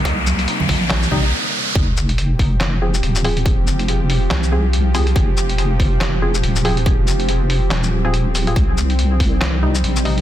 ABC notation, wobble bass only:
X:1
M:4/4
L:1/8
Q:"Swing 16ths" 1/4=141
K:Fm
V:1 name="Wobble bass" clef=bass
C,,2 z B,,,3 z2 | F,,,6 E,,,2- | E,,, F,,,3 C,,4 | F,,,6 E,,,2- |
E,,, F,,,3 E,,,4 | C,,6 B,,,2 |]